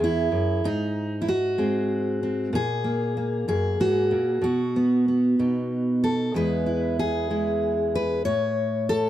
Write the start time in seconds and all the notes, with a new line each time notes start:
Already playing: G#4
0.00 E2 E4
0.32 F#2
0.64 G#2 D#4
1.22 E4
1.28 F#4
1.58 G#3 C4
2.23 C4
2.53 A#2 G#4
2.84 A#3
3.17 A#3
3.48 F#2 G#4
3.80 G#2 F#4
4.11 A#2
4.42 B2 F#4
4.76 B3
5.08 B3
5.39 B2 D#4
6.04 A4
6.34 E2 G#3 B3 E4 B4
6.66 E4
6.99 G#4
7.30 G#3 E4
7.95 B4
8.25 A2 C#5
8.89 A4